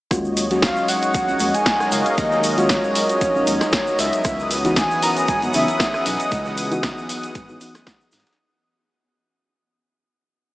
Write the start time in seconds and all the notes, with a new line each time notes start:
0.11 D#2 F#3 G#3 C#4 D#4 F4 F#4 C#5 D#5, kick, cross-stick, closed hi-hat, shaker
0.25 shaker
0.37 closed hi-hat, open hi-hat, shaker
0.50 F#3 G#3 C#4 F#4, snare, closed hi-hat, shaker
0.62 F5, kick, snare, closed hi-hat, shaker
0.76 A#4, shaker
0.88 F#5, closed hi-hat, open hi-hat, shaker
1.03 closed hi-hat, shaker
1.14 A#1, kick, closed hi-hat, shaker
1.28 F3 G#3 C#4 F4, closed hi-hat, shaker
1.39 D#2 F3 G#3 C#4 F#4, closed hi-hat, open hi-hat, shaker
1.54 G#5, closed hi-hat, shaker
1.66 kick, snare, closed hi-hat, shaker
1.80 cross-stick, snare, shaker
1.92 C#2 F5, closed hi-hat, open hi-hat, shaker
2.06 closed hi-hat, shaker
2.18 D#2 D#5, kick, closed hi-hat, open hi-hat, shaker
2.32 snare, shaker
2.44 closed hi-hat, open hi-hat, shaker
2.57 G#3 C#4 F4 F#4 C#5, snare, closed hi-hat, shaker
2.69 kick, snare, closed hi-hat, shaker
2.84 shaker
2.95 closed hi-hat, open hi-hat, shaker
3.09 closed hi-hat, shaker
3.21 A#1, kick, closed hi-hat, shaker
3.35 F3 G#3 C#4 F4, shaker
3.47 D#2 F3 G#3 C#4 F#4, closed hi-hat, open hi-hat, shaker
3.61 cross-stick, snare, closed hi-hat, shaker
3.73 kick, snare, closed hi-hat, shaker
3.87 shaker
3.99 C#2 E5, snare, closed hi-hat, open hi-hat, shaker
4.13 closed hi-hat, shaker
4.24 C#2 E3 B3 C#4 F#5 D#6, kick, cross-stick, closed hi-hat, shaker
4.39 G#4, shaker
4.51 closed hi-hat, open hi-hat, shaker
4.64 E3 B3 D#4 F#4, snare, closed hi-hat, shaker
4.76 G#5, kick, snare, closed hi-hat, shaker
4.91 shaker
5.02 A#5, closed hi-hat, open hi-hat, shaker
5.17 closed hi-hat, shaker
5.28 G#1 G#5, kick, closed hi-hat, shaker
5.42 E3 B3 D#4 F#4, closed hi-hat, shaker
5.53 C#2 E3 B3 D#4 F#4 E5, closed hi-hat, open hi-hat, shaker
5.68 closed hi-hat, shaker
5.80 kick, snare, closed hi-hat, shaker
5.94 cross-stick, snare, shaker
6.06 B1 D#5, closed hi-hat, open hi-hat, shaker
6.20 closed hi-hat, shaker
6.32 C#2, kick, closed hi-hat, open hi-hat, shaker
6.45 snare, shaker
6.57 closed hi-hat, open hi-hat, shaker
6.71 E3 B3 D#4 F#4, closed hi-hat, shaker
6.83 kick, snare, closed hi-hat, shaker
6.98 shaker
7.09 closed hi-hat, open hi-hat, shaker
7.23 closed hi-hat, shaker
7.35 G#1, kick, closed hi-hat, shaker
7.49 E3 B3 D#4 F#4, shaker
7.61 E3 B3 D#4 F#4, closed hi-hat, open hi-hat, shaker
7.75 cross-stick, snare, closed hi-hat, shaker
7.87 kick, snare, closed hi-hat, shaker
8.01 shaker
8.12 G#1, snare, closed hi-hat, open hi-hat, shaker
8.20 snare, closed hi-hat
8.26 snare, closed hi-hat, shaker
8.33 snare, closed hi-hat